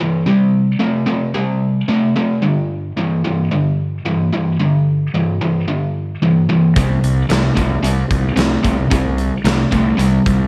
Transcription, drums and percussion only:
6.76 kick, closed hi-hat
7.04 closed hi-hat
7.30 snare, closed hi-hat
7.57 kick, closed hi-hat
7.84 closed hi-hat
8.11 kick, closed hi-hat
8.37 snare, closed hi-hat
8.64 kick, closed hi-hat
8.91 kick, closed hi-hat
9.18 closed hi-hat
9.45 snare, closed hi-hat
9.72 kick, closed hi-hat
9.99 closed hi-hat
10.26 kick, closed hi-hat

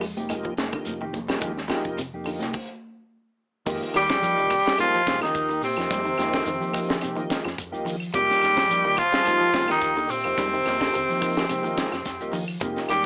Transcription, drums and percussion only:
0.01 open hi-hat, claves, shekere
0.17 closed hi-hat, high conga
0.29 closed hi-hat, high conga, claves, shekere
0.45 kick
0.57 snare, closed hi-hat, high conga, shekere
0.73 kick, closed hi-hat, claves
0.85 closed hi-hat, high conga, shekere
1.13 kick, closed hi-hat, high conga, low conga, shekere
1.29 snare, closed hi-hat, claves
1.41 kick, closed hi-hat, high conga, low conga, shekere
1.58 snare
1.68 kick, snare, closed hi-hat, high conga, claves, shekere
1.85 kick, closed hi-hat
1.97 closed hi-hat, high conga, shekere
2.25 open hi-hat, claves, shekere
2.39 snare, closed hi-hat, high conga
2.53 kick, crash
3.66 kick, crash, shekere
3.82 closed hi-hat, shekere
3.94 closed hi-hat, claves, shekere
4.09 kick, snare, closed hi-hat, shekere
4.23 closed hi-hat, shekere
4.39 shekere
4.50 kick, open hi-hat, claves, shekere
4.66 snare, closed hi-hat, shekere
4.78 snare, closed hi-hat, claves, shekere
4.94 closed hi-hat, shekere
5.07 kick, snare, closed hi-hat, shekere
5.22 snare, closed hi-hat, claves, shekere
5.35 kick, closed hi-hat, shekere
5.50 closed hi-hat, shekere
5.63 open hi-hat, shekere
5.77 snare, closed hi-hat, claves, shekere
5.91 kick, snare, closed hi-hat, shekere
6.06 shekere
6.18 snare, closed hi-hat, claves, shekere
6.33 kick, snare, closed hi-hat, shekere
6.46 closed hi-hat, shekere
6.62 closed hi-hat, shekere
6.74 kick, open hi-hat, claves, shekere
6.90 snare, shekere
7.01 closed hi-hat, claves, shekere
7.17 closed hi-hat, shekere
7.30 kick, snare, closed hi-hat, shekere
7.45 snare, closed hi-hat, claves, shekere
7.58 kick, closed hi-hat, shekere
7.74 closed hi-hat, shekere
7.87 open hi-hat, shekere
8.00 claves, shekere
8.14 kick, closed hi-hat, shekere
8.30 snare, closed hi-hat, shekere
8.41 snare, closed hi-hat, claves, shekere
8.56 kick, snare, closed hi-hat, shekere
8.70 closed hi-hat, shekere
8.85 shekere
8.97 kick, open hi-hat, claves, shekere
9.13 snare, closed hi-hat, shekere
9.25 closed hi-hat, claves, shekere
9.41 closed hi-hat, shekere
9.53 kick, snare, closed hi-hat, shekere
9.68 snare, closed hi-hat, claves, shekere
9.81 kick, closed hi-hat, shekere
9.96 closed hi-hat, shekere
10.09 open hi-hat, shekere
10.24 closed hi-hat, claves, shekere
10.37 kick, snare, closed hi-hat, shekere
10.54 shekere
10.66 snare, closed hi-hat, claves, shekere
10.81 kick, snare, closed hi-hat, shekere
10.94 closed hi-hat, shekere
11.09 closed hi-hat, shekere
11.22 kick, open hi-hat, claves, shekere
11.37 snare, shekere
11.49 closed hi-hat, claves, shekere
11.64 closed hi-hat, shekere
11.77 kick, snare, closed hi-hat, shekere
11.92 snare, closed hi-hat, claves, shekere
12.05 kick, snare, closed hi-hat, shekere
12.21 closed hi-hat, shekere
12.33 open hi-hat, shekere
12.48 claves, shekere
12.61 kick, closed hi-hat, shekere
12.76 snare, closed hi-hat, shekere
12.89 snare, closed hi-hat, claves, shekere

